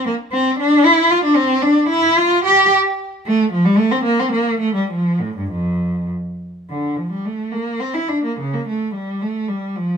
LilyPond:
\new Staff \with { instrumentName = "Cello" } { \time 3/4 \key f \major \tempo 4 = 110 bes8 c'8 d'8 e'8 f'16 d'16 c'8 | d'8 e'8 f'8 g'8 r4 | a8 f16 g16 a16 c'16 bes16 c'16 bes8 a16 g16 | f8 a,16 g,16 f,4 r4 |
\key a \phrygian d8 f16 g16 a8 bes8 c'16 e'16 d'16 bes16 | cis16 bes16 a8 g8 a8 g8 f8 | }